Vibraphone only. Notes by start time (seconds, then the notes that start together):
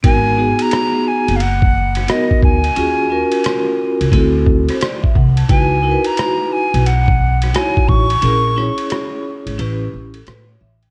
0.03 B3 D#4 F#4 A#4
0.37 B3 D#4 F#4 G#4
2.07 B3 D#4 F#4 A#4
2.75 C#4 F4 F#4 G#4
3.10 C#4 F4 F#4 A#4
4.12 C4 E4 F#4 A4
4.69 C5
4.81 D5
5.03 E5
5.15 F#5
5.37 A5
5.48 D#4 E4 F#4 B4
5.82 D#4 E4 F#4 A#4
5.91 B4
7.53 D#4 E4 F#4 C#5
8.21 C#4 E4 G#4 A#4
8.56 C#4 E4 G#4 C#5
9.58 C#4 E4 G4 B4
10.14 A4
10.27 B4
10.49 C#5
10.61 E5
10.82 G5